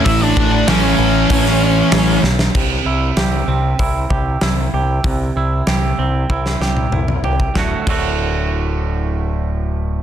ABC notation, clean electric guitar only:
X:1
M:4/4
L:1/8
Q:1/4=96
K:Clyd
V:1 name="Clean electric guitar"
z8 | C, E G C E G E G | C, E G C E G E G | [D,,A,,D,A,F] [D,,A,,D,A,F]6- [D,,A,,D,A,F] |]